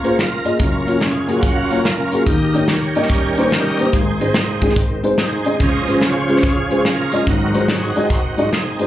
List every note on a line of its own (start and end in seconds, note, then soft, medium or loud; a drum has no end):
0.00 0.56 C#2 medium
0.00 0.56 C#3 medium
0.00 0.12 A#3 medium
0.00 0.18 F4 medium
0.00 0.12 F4 medium
0.00 0.12 G#4 medium
0.00 0.18 A#4 medium
0.00 0.16 C#5 medium
0.04 0.13 C5 medium
0.04 closed hi-hat medium
0.19 0.58 F4 medium
0.19 0.58 A#4 medium
0.19 snare loud
0.19 closed hi-hat medium
0.45 0.54 A#3 medium
0.45 0.54 F4 medium
0.45 0.54 G#4 medium
0.45 0.54 D#5 medium
0.45 closed hi-hat medium
0.59 2.22 F#1 medium
0.59 2.22 F#2 medium
0.59 0.99 C#4 medium
0.59 0.99 F4 medium
0.59 1.03 A#4 medium
0.59 kick medium
0.59 closed hi-hat medium
0.86 0.95 A#3 medium
0.86 0.95 F4 medium
0.86 0.96 F#4 medium
0.86 0.96 C#5 medium
0.86 closed hi-hat medium
1.00 1.41 C#4 medium
1.00 1.28 F4 medium
1.00 1.40 G#4 medium
1.00 snare loud
1.00 closed hi-hat medium
1.27 1.81 F#3 soft
1.27 1.37 A#3 medium
1.27 1.41 A#3 soft
1.27 1.37 F4 medium
1.27 1.82 F4 medium
1.27 1.37 F#4 medium
1.27 1.38 G#4 medium
1.27 closed hi-hat medium
1.42 2.22 A#3 medium
1.42 1.83 C#4 medium
1.42 1.82 F#4 medium
1.42 kick loud
1.42 closed hi-hat medium
1.71 1.79 A#3 medium
1.71 1.79 F4 medium
1.71 1.79 F#4 medium
1.71 1.80 C#5 medium
1.71 closed hi-hat medium
1.84 2.23 C#4 medium
1.84 2.23 F4 medium
1.84 2.23 A#4 medium
1.84 snare medium
1.84 closed hi-hat medium
2.12 2.20 A#3 medium
2.12 2.21 F4 medium
2.12 2.21 F#4 medium
2.12 2.21 G#4 medium
2.12 closed hi-hat medium
2.26 3.89 D#2 medium
2.26 3.89 D#3 medium
2.26 2.67 G4 medium
2.26 2.68 A#4 medium
2.26 2.69 D#5 medium
2.26 kick loud
2.26 closed hi-hat medium
2.54 2.62 A#3 medium
2.54 2.63 D#4 medium
2.54 2.63 G4 medium
2.54 2.63 C#5 medium
2.54 closed hi-hat medium
2.68 3.10 G4 medium
2.68 3.10 A#4 medium
2.68 3.07 C#5 medium
2.68 snare loud
2.68 closed hi-hat medium
2.95 3.89 D#3 medium
2.95 3.90 G3 medium
2.95 3.04 A#3 medium
2.95 3.90 C#4 medium
2.95 3.04 D#4 medium
2.95 3.04 G4 medium
2.95 3.04 D#5 medium
2.95 closed hi-hat medium
3.03 snare soft
3.10 3.51 G4 medium
3.10 3.51 A#4 medium
3.10 3.53 C#5 medium
3.10 kick loud
3.10 snare soft
3.10 closed hi-hat medium
3.37 3.46 A#3 medium
3.37 3.46 D#4 medium
3.37 3.46 G4 medium
3.37 3.46 C5 medium
3.37 closed hi-hat medium
3.51 3.90 G4 medium
3.51 3.91 A#4 medium
3.51 3.94 D#5 medium
3.51 snare loud
3.51 closed hi-hat medium
3.79 3.87 A#3 medium
3.79 3.87 D#4 medium
3.79 3.88 G4 medium
3.79 3.88 C5 medium
3.79 closed hi-hat medium
3.93 5.56 G#1 medium
3.93 5.56 G#2 medium
3.93 4.73 D#4 soft
3.93 4.73 G#4 soft
3.93 4.73 C5 medium
3.93 kick medium
3.93 closed hi-hat medium
4.20 4.76 G#2 medium
4.20 4.76 D#3 soft
4.20 4.29 G#3 medium
4.20 4.29 C4 medium
4.20 4.77 C4 medium
4.20 4.29 D#4 medium
4.20 4.30 C5 medium
4.20 closed hi-hat medium
4.34 snare loud
4.34 closed hi-hat medium
4.62 4.70 G#3 medium
4.62 4.70 C4 medium
4.62 4.71 D#4 medium
4.62 4.71 G#4 loud
4.62 kick medium
4.62 closed hi-hat medium
4.69 snare soft
4.76 5.01 G#2 soft
4.76 5.01 D#3 soft
4.76 5.02 C4 soft
4.76 kick medium
4.76 closed hi-hat medium
5.03 5.12 G#3 medium
5.03 5.12 C4 medium
5.03 5.12 D#4 medium
5.03 5.13 C5 medium
5.03 closed hi-hat medium
5.18 5.57 D#4 medium
5.18 5.57 G#4 medium
5.18 5.57 C5 medium
5.18 snare loud
5.18 closed hi-hat medium
5.45 5.54 G#3 medium
5.45 5.54 C4 medium
5.45 5.54 D#4 medium
5.45 5.54 D#5 medium
5.45 closed hi-hat medium
5.59 7.23 C#2 medium
5.59 7.22 C#3 soft
5.59 7.23 C#3 medium
5.59 7.23 F3 soft
5.59 7.23 C#4 medium
5.59 6.02 G#4 medium
5.59 6.39 C5 medium
5.59 6.03 D#5 medium
5.59 kick loud
5.59 closed hi-hat medium
5.87 5.96 G#3 medium
5.87 5.96 C#4 medium
5.87 5.96 F4 medium
5.87 5.96 C5 medium
5.87 closed hi-hat medium
6.01 6.43 F4 medium
6.01 6.43 G#4 medium
6.01 6.41 C#5 medium
6.01 snare loud
6.01 closed hi-hat medium
6.29 6.37 G#3 medium
6.29 6.38 C#4 medium
6.29 6.38 F4 medium
6.29 6.38 C5 medium
6.29 closed hi-hat medium
6.36 snare soft
6.43 6.85 F4 medium
6.43 7.23 G#4 medium
6.43 6.83 C#5 medium
6.43 kick loud
6.43 snare soft
6.43 closed hi-hat medium
6.71 6.79 G#3 medium
6.71 6.79 C#4 medium
6.71 6.79 F4 medium
6.71 6.80 C5 medium
6.71 closed hi-hat medium
6.85 7.24 F4 medium
6.85 7.27 A#4 medium
6.85 snare loud
6.85 closed hi-hat medium
7.12 7.21 G#3 medium
7.12 7.21 C#4 medium
7.12 7.21 F4 medium
7.12 7.22 D#5 medium
7.12 closed hi-hat medium
7.26 8.87 G#1 medium
7.26 7.92 G#2 soft
7.26 8.87 G#2 medium
7.26 7.92 F#3 soft
7.26 7.68 C4 soft
7.26 7.68 D#4 medium
7.26 8.07 F#4 medium
7.26 7.66 A#4 medium
7.26 kick medium
7.26 closed hi-hat medium
7.53 7.62 G#3 medium
7.53 7.62 D#4 medium
7.53 7.63 F#4 medium
7.53 7.63 C5 medium
7.53 closed hi-hat medium
7.68 8.09 C4 medium
7.68 8.09 D#4 medium
7.68 8.08 G#4 medium
7.68 snare loud
7.68 closed hi-hat medium
7.95 8.04 G#3 medium
7.95 8.04 D#4 medium
7.95 8.04 F#4 medium
7.95 8.05 D#5 medium
7.95 closed hi-hat medium
8.10 8.37 C4 medium
8.10 8.51 D#4 medium
8.10 8.50 F#4 medium
8.10 kick loud
8.10 snare soft
8.10 closed hi-hat medium
8.37 8.50 G#2 soft
8.37 8.51 F#3 soft
8.37 8.46 G#3 medium
8.37 8.51 C4 medium
8.37 8.46 D#4 medium
8.37 8.46 F#4 medium
8.37 8.47 D#5 medium
8.37 closed hi-hat medium
8.52 8.87 C4 medium
8.52 8.87 D#4 medium
8.52 8.87 G#4 medium
8.52 snare medium
8.52 closed hi-hat medium
8.79 8.87 G#3 medium
8.79 8.87 D#4 medium
8.79 8.87 F#4 medium
8.79 8.87 C5 medium
8.79 closed hi-hat medium